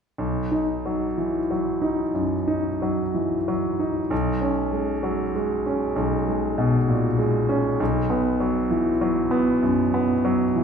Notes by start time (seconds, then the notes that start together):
0.18 B1
0.52 D#4
0.86 F#3
1.18 E3
1.50 F#3
1.82 D#4
2.15 F#2
2.48 D#4
2.82 F#3
3.14 E3
3.48 F#3
3.79 D#4
4.10 B1
4.41 C#4
4.72 G#3
5.03 F#3
5.35 G#3
5.66 C#4
5.96 B1
6.28 G#3
6.58 B2
6.89 A#2
7.19 G#3
7.49 C#4
7.80 B1
8.10 B3
8.40 F#3
8.71 E3
9.01 F#3
9.31 B3
9.62 F#2
9.94 B3
10.25 F#3
10.56 E3